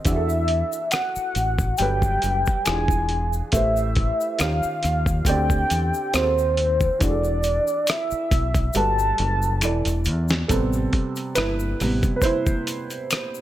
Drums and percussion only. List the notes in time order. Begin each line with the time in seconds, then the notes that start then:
0.05 kick, closed hi-hat, shaker
0.29 shaker
0.48 closed hi-hat
0.72 shaker
0.91 finger snap, cross-stick, closed hi-hat, shaker
1.16 shaker
1.35 closed hi-hat, shaker
1.59 kick, shaker
1.78 closed hi-hat, shaker
2.02 kick, shaker
2.22 closed hi-hat, shaker
2.46 kick, shaker
2.65 finger snap, cross-stick, closed hi-hat, shaker
2.88 kick, shaker
3.09 closed hi-hat
3.33 shaker
3.52 kick, closed hi-hat, shaker
3.77 shaker
3.95 kick, closed hi-hat
4.21 shaker
4.39 finger snap, cross-stick, closed hi-hat, shaker
4.63 shaker
4.83 cross-stick, closed hi-hat, shaker
5.06 kick, shaker
5.25 kick, closed hi-hat, shaker
5.50 kick, shaker
5.70 closed hi-hat, shaker
5.94 shaker
6.14 finger snap, cross-stick, closed hi-hat, shaker
6.38 shaker
6.57 closed hi-hat
6.81 kick, shaker
7.00 kick, closed hi-hat, shaker
7.24 shaker
7.43 closed hi-hat, shaker
7.67 shaker
7.87 finger snap, cross-stick, closed hi-hat, shaker
8.11 shaker
8.31 kick, closed hi-hat, shaker
8.55 kick, closed hi-hat, shaker
8.73 closed hi-hat, shaker
8.99 shaker
9.18 closed hi-hat
9.42 shaker
9.61 finger snap, closed hi-hat, shaker
9.85 closed hi-hat, shaker
10.05 closed hi-hat, shaker
10.28 snare, shaker
10.49 kick, closed hi-hat, shaker
10.73 shaker
10.93 kick, closed hi-hat
11.16 closed hi-hat, shaker
11.36 finger snap, cross-stick, closed hi-hat, shaker
11.60 shaker
11.80 cross-stick, open hi-hat, shaker
12.03 kick, closed hi-hat, shaker
12.22 kick, closed hi-hat, shaker
12.47 kick, shaker
12.67 closed hi-hat, shaker
12.90 closed hi-hat, shaker
13.11 finger snap, cross-stick, closed hi-hat, shaker
13.35 shaker